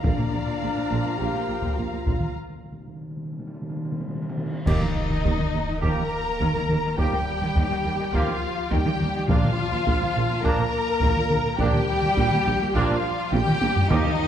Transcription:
0.01 A#1 A#2 D3 F3 A#3 F4 D5 F5 A#5, taiko
0.05 D4
0.18 A#2 A#3
0.32 A#1 A#2 F3
0.47 A#2 D3
0.62 A#1 A#2 A#3
0.77 A#2 F3
0.90 A#1 A#2 D3
1.05 A#2 A#3
1.18 A#1 A#2 D3 G4 G5
1.33 A#2 A#3
1.48 A#1 A#2 F3
1.62 A#2 D3, taiko
1.77 A#1 A#2 A#3 F4 F5
1.93 A#2 F3
2.06 A#1 A#2 D3, taiko
2.20 taiko mid
2.35 D#3
2.42 D#3
2.50 D#3
2.57 D#3
2.64 D#3
2.72 D#3
2.80 D#3
2.87 D#3
2.95 D#3
3.01 D#3
3.10 D#3
3.17 D#3
3.24 D#3
3.32 D#3
3.39 D#3
3.47 D#3
3.54 D#3
3.62 D#3
3.69 D#3
3.77 D#3
3.85 D#3
3.92 D#3
4.00 D#3
4.08 D#3
4.15 D#3
4.22 D#3
4.29 D#3
4.37 D#3
4.46 D#3
4.53 D#3
4.66 D#2 D#3 F3 A#3 D#4 G4 D#5, concert bass drum, taiko, crash
4.81 D#3, taiko mid
5.11 D#3, taiko mid
5.24 D#2 D#3, taiko
5.38 D#3, taiko mid
5.52 D#2 D#3
5.68 D#3
5.81 D#2 D#3 F3 A#3 G4 A#4 A#5, taiko
5.98 D#3
6.40 D#2 D#3, taiko
6.55 D#3, taiko mid
6.68 D#2 D#3, taiko mid
6.85 D#3
6.97 D#2 D#3 F3 G3 A#3 G4 G5, taiko
7.13 D#3, taiko mid
7.42 D#3, taiko mid
7.56 D#2 D#3, taiko
7.71 D#3, taiko mid
7.84 D#2 D#3
7.99 D#3
8.13 D#2 D#3 F3 A#3 F4 G4 F5, taiko
8.28 D#3
8.70 D#2 D#3 G3 G4 G5, taiko
8.85 D#3, taiko mid
9.00 D#2 D#3, taiko mid
9.15 D#3
9.27 A#1 A#2 F3 A#3 D4 F4 F5, taiko
9.44 A#2, taiko mid
9.72 A#2, taiko mid
9.86 A#1 A#2, taiko
10.02 A#2, taiko mid
10.16 A#1 A#2
10.31 A#2
10.43 A#1 A#2 F3 A#3 D4 A#4 A#5, taiko
10.59 A#2
11.02 A#1 A#2, taiko
11.16 A#2, taiko mid
11.30 A#1 A#2, taiko mid
11.46 A#2
11.58 A#1 A#2 F3 A#3 D4 G4 G5, taiko
11.62 G3
11.74 A#2, taiko mid
12.02 A#2, taiko mid
12.17 A#1 A#2, taiko
12.31 A#2, taiko mid
12.45 A#1 A#2
12.61 A#2
12.74 A#1 A#2 F3 A#3 D4 F4 F5, taiko
12.91 A#2
13.31 A#1 A#2 G3 G4 G5, taiko high
13.47 A#2, taiko mid
13.61 A#1 A#2, taiko high
13.76 A#2, taiko low
13.89 D#2 D#3 F3 A#3 D#4 G4 D#5, taiko
14.05 D#3, taiko mid

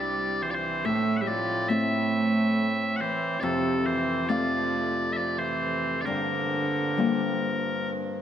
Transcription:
Already playing: C2 G3 C4 D4 E4
0.00 D5
0.43 E3 C5
0.50 F3 D5
0.54 E3 C5
0.83 A2 A3 C4 E5
1.17 F#5
1.21 G3 E5
1.27 F3 D5
1.68 A3 C4 E4 E5
2.96 E3 F#5
3.01 C5
3.40 F2 C3 A3 A4 D5
3.85 E3 C5
4.26 F3 A3 C4 D5 F5
5.13 F3 D5 E5
5.37 E3 C5
6.01 D3 D5
6.05 G2 F3 A#3 A#4
6.97 G3 A#3 F4

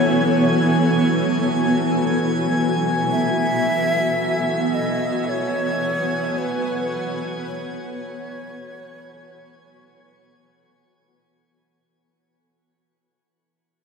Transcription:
Already playing: E3 B3 F#4 A4 C#5 E5 G#5 G#6
2.76 F#5
3.11 E5
3.83 B4
4.74 D#5
5.29 C#5
6.38 B4
7.47 C#5

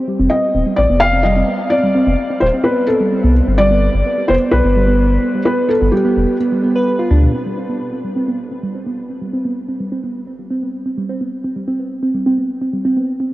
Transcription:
0.08 G3
0.19 F1 C4
0.30 B3 D#5
0.55 D#1 C4
0.66 G3
0.76 A1 C4 D5
0.90 F1 B3
1.00 F5
1.13 C4
1.23 G3 D#5
1.36 C4
1.48 B3
1.70 C4 D5
1.83 G3
1.95 C4
2.07 F1 B3
2.30 C4
2.40 D#1 G3 C5
2.54 C4
2.64 B3 B4
2.87 C4 A4
3.00 G3
3.12 C4
3.24 C2 B3
3.47 G1 C4
3.58 G3 D5
3.71 B3
3.82 B3
3.94 G1
4.06 B3
4.18 G3
4.28 F1 B3 C5
4.41 B3
4.51 B1 B4
4.65 G1 B3
4.76 G3
4.88 B3
5.00 B3
5.23 B3
5.35 G3
5.45 B3 B4
5.58 B3
5.69 A4
5.82 G1 B3
5.92 G3 G4
6.05 B3
6.17 F1 B3
6.40 B3
6.52 G3
6.64 B3
6.75 B4
6.99 F4
7.11 D2 D4
7.22 B2
7.34 C4
7.46 G3
7.58 C4
7.69 B3
7.93 C4
8.04 G3
8.16 C4
8.28 B3
8.51 C4
8.63 G3
8.75 C4
8.86 B3
9.10 C4
9.22 G3
9.33 C4
9.45 B3
9.69 C4
9.80 G3
9.92 C4
10.04 B3
10.27 C4
10.39 G3
10.50 C4
10.62 B3
10.86 C4
10.97 G3
11.09 C4
11.21 B3
11.44 C4
11.56 G3
11.68 C4
11.79 B3
12.03 C4
12.15 G3
12.26 C4
12.38 B3
12.62 C4
12.73 G3
12.85 C4
12.97 B3
13.20 C4

